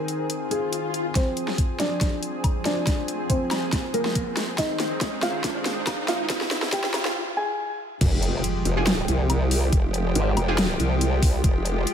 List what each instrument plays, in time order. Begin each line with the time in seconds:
Already playing: analog synth pad D#3 C4 G#4, felt piano A#4
0.08 closed hi-hat
0.30 closed hi-hat, swell
0.51 felt piano G#4, closed hi-hat
0.73 closed hi-hat
0.94 closed hi-hat
1.15 analog synth pad F3 C4 G#4, felt piano C4 C5, kick, snare, closed hi-hat, riser
1.37 closed hi-hat
1.48 snare
1.58 kick, closed hi-hat
1.80 felt piano D4 D5, snare, closed hi-hat
2.01 kick, snare, closed hi-hat
2.23 closed hi-hat
2.44 kick, closed hi-hat, low woodblock
2.65 felt piano D4 D5, snare, closed hi-hat
2.87 kick, snare, closed hi-hat
3.08 closed hi-hat
3.30 felt piano C4 C5, kick, closed hi-hat
3.51 snare, closed hi-hat, low woodblock
3.73 kick, snare, closed hi-hat
3.94 felt piano A#3 A#4, closed hi-hat
4.05 snare
4.15 kick, closed hi-hat
4.37 snare, closed hi-hat
4.58 analog synth pad D#3 G#3 C4, felt piano D#4 D#5, kick, snare, closed hi-hat
4.80 snare, closed hi-hat
5.01 kick, snare, closed hi-hat
5.23 felt piano F4 F5, snare, closed hi-hat
5.44 kick, snare, closed hi-hat
5.66 snare, closed hi-hat
5.87 kick, snare, closed hi-hat, low woodblock
6.08 felt piano F4 F5, snare, closed hi-hat
6.30 kick, snare, closed hi-hat
6.41 snare
6.51 snare, closed hi-hat
6.62 snare
6.73 felt piano G4 G5, kick, snare, closed hi-hat
6.84 snare
6.94 snare, closed hi-hat, low woodblock
7.05 snare
7.37 felt piano G#4 G#5
8.01 wobble bass F1, analog synth pad F3 G#3 G4, kick, closed hi-hat, crash, impact
8.23 closed hi-hat
8.44 closed hi-hat
8.65 wobble bass F1, closed hi-hat
8.77 synth stab F4 G4 G#4
8.87 snare, closed hi-hat
9.08 wobble bass C2, closed hi-hat
9.30 closed hi-hat, low woodblock
9.51 open hi-hat
9.72 wobble bass F1, kick, closed hi-hat
9.94 closed hi-hat
10.15 wobble bass G#1, closed hi-hat
10.37 wobble bass F1, closed hi-hat, low woodblock
10.48 synth stab F4 G4 G#4
10.58 snare, closed hi-hat
10.80 wobble bass C2, closed hi-hat
11.01 closed hi-hat
11.23 kick, open hi-hat
11.44 wobble bass F1, kick, closed hi-hat
11.65 closed hi-hat
11.87 closed hi-hat